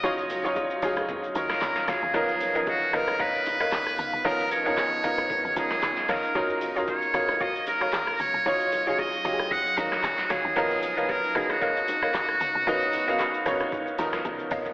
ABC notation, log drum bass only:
X:1
M:4/4
L:1/16
Q:"Swing 16ths" 1/4=114
K:Cblyd
V:1 name="Log drum bass" clef=bass
E,,6 D,,4 E,,2 D,,2 D,, E,, | ^D,,6 ^C,,4 z2 D,,2 C,, =B,,, | ^D,,6 ^C,,2 z D,, C,, z C,, z D,, z | E,,6 D,,4 z2 E,,2 D,, B,,, |
E,,6 D,,4 E,,2 D,,2 D,, E,, | ^D,,6 ^C,,4 z2 D,,2 C,, =B,,, | ^D,,6 ^C,,4 D,,2 C,, z C,, z |]